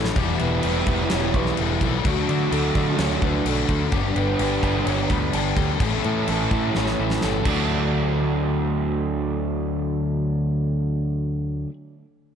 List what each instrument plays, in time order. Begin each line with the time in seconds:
Already playing: picked electric bass A1, overdriven electric guitar A2 E3 A3 C#4 E4, clean electric guitar A4
0.04 snare
0.16 picked electric bass E1, overdriven electric guitar E2 B2 E3 G3 B3 E4, clean electric guitar G4, kick, crash
0.39 picked electric bass E1, overdriven electric guitar E3 G3 B3 E4, clean electric guitar B4, crash
0.63 picked electric bass E1, overdriven electric guitar E3 G3 B3 E4, clean electric guitar B4, crash
0.86 picked electric bass E1, overdriven electric guitar E3 G3 B3 E4, clean electric guitar B4, kick, crash
1.10 picked electric bass E1, overdriven electric guitar E2 B2 E3 G3 B3 E4, clean electric guitar C#5, snare, crash
1.34 picked electric bass B1, overdriven electric guitar E3 G3 B3 E4, clean electric guitar B4, kick, crash
1.46 snare
1.57 picked electric bass E1, overdriven electric guitar E3 G3 B3 E4, clean electric guitar A4, crash
1.81 picked electric bass B1, overdriven electric guitar E3 G3 B3 E4, clean electric guitar A4, kick, crash
2.05 picked electric bass D2, overdriven electric guitar D3 F#3 A3 D4 F#4, clean electric guitar F#4, kick, crash
2.29 picked electric bass D3, overdriven electric guitar A3 D4 F#4, clean electric guitar A4, crash
2.52 picked electric bass D2, overdriven electric guitar D3 A3 D4 F#4, clean electric guitar A4, crash
2.74 picked electric bass D3, overdriven electric guitar A3 D4 F#4, clean electric guitar A4, kick, crash
2.99 picked electric bass D2, overdriven electric guitar D3 A3 D4 F#4, clean electric guitar C#5, snare, crash
3.22 picked electric bass D2, overdriven electric guitar A3 D4 F#4, clean electric guitar B4, kick, crash
3.45 picked electric bass B1, overdriven electric guitar D3 A3 D4 F#4, clean electric guitar A4, crash
3.68 picked electric bass D2, overdriven electric guitar A3 D4 F#4, clean electric guitar A4, kick, crash
3.91 picked electric bass G1, overdriven electric guitar G2 D3 G3 B3 D4 G4, clean electric guitar G4, kick, crash
4.16 picked electric bass G1, overdriven electric guitar G3 B3 D4 G4, clean electric guitar B4, crash
4.39 picked electric bass G1, overdriven electric guitar G3 B3 D4 G4, clean electric guitar B4, crash
4.63 picked electric bass G1, overdriven electric guitar G3 B3 D4 G4, clean electric guitar B4, kick, crash
4.86 picked electric bass G1, overdriven electric guitar G2 D3 G3 B3 D4 G4, clean electric guitar C#5, crash
5.10 picked electric bass D2, overdriven electric guitar G3 B3 D4 G4, clean electric guitar B4, kick, crash
5.33 picked electric bass G1, overdriven electric guitar G3 B3 D4 G4, clean electric guitar A4, crash
5.57 picked electric bass D2, overdriven electric guitar G3 B3 D4 G4, clean electric guitar A4, kick, crash
5.80 picked electric bass A1, overdriven electric guitar A2 E3 A3 C#4 E4 A4, clean electric guitar G4, kick, crash
6.04 picked electric bass A2, overdriven electric guitar A3 C#4 A4, clean electric guitar A4, crash
6.28 picked electric bass A1, overdriven electric guitar E3 A3 C#4, clean electric guitar A4, crash
6.32 overdriven electric guitar A4
6.51 picked electric bass A2, overdriven electric guitar A3 C#4 A4, clean electric guitar A4, kick, crash
6.75 picked electric bass A1, overdriven electric guitar A2 E3 A3 C#4 A4, clean electric guitar C#5, snare
6.86 snare
7.00 picked electric bass A1, overdriven electric guitar A3 C#4 A4, clean electric guitar B4
7.10 snare
7.21 picked electric bass G1, overdriven electric guitar E3 A3 C#4, clean electric guitar A4, snare
7.25 overdriven electric guitar A4
7.45 picked electric bass D2, overdriven electric guitar D3 F#3 A3 D4, clean electric guitar D4, kick, crash
7.50 overdriven electric guitar F#4